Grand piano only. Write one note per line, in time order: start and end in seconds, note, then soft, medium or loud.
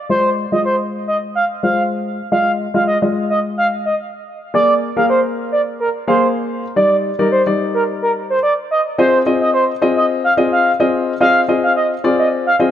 0.09 0.43 G#3 medium
0.09 0.43 F4 medium
0.09 0.43 D#5 medium
0.52 1.39 G#3 medium
0.52 1.39 F4 medium
0.52 1.40 D#5 medium
1.63 2.18 G#3 medium
1.63 2.18 F4 medium
1.63 2.18 C5 medium
2.32 2.65 G#3 medium
2.32 2.65 F4 medium
2.32 2.65 D#5 medium
2.74 2.96 G#3 medium
2.74 2.96 F4 medium
2.74 2.96 D#5 medium
3.02 3.89 G#3 medium
3.02 3.89 F4 medium
3.02 3.90 D#5 medium
4.54 4.87 A#3 medium
4.54 4.87 G#4 medium
4.54 4.87 D5 medium
4.96 5.84 A#3 medium
4.96 5.84 G#4 medium
4.96 5.84 A#4 medium
6.07 6.62 A#3 medium
6.07 6.62 G#4 medium
6.07 6.62 F5 medium
6.76 7.09 G3 medium
6.76 7.09 D#4 medium
6.76 7.10 D5 medium
7.19 7.40 G3 medium
7.19 7.40 D#4 medium
7.19 7.41 D5 medium
7.46 8.34 G3 medium
7.46 8.34 D#4 medium
7.46 8.34 D5 medium
8.98 9.21 C4 medium
8.98 9.21 F4 medium
8.98 9.21 G#4 medium
8.98 9.21 D#5 medium
9.26 9.71 C4 medium
9.26 9.71 F4 medium
9.26 9.71 G#4 medium
9.26 9.71 D#5 medium
9.82 10.26 C4 medium
9.82 10.26 F4 medium
9.82 10.26 G#4 medium
9.82 10.26 D#5 medium
10.37 10.70 C4 medium
10.37 10.71 F4 medium
10.37 10.71 G#4 medium
10.37 10.71 D#5 medium
10.80 11.12 C4 medium
10.80 11.12 F4 medium
10.80 11.12 G#4 medium
10.80 11.13 D#5 medium
11.20 11.43 C4 medium
11.20 11.43 F4 medium
11.20 11.43 G#4 medium
11.20 11.43 D#5 medium
11.48 11.93 C4 medium
11.48 11.93 F4 medium
11.48 11.93 G#4 medium
11.48 11.93 D#5 medium
12.04 12.48 C4 medium
12.04 12.49 F4 medium
12.04 12.49 G#4 medium
12.04 12.49 D5 medium
12.59 12.71 C4 medium
12.59 12.71 F4 medium
12.59 12.71 G#4 medium
12.59 12.71 D#5 medium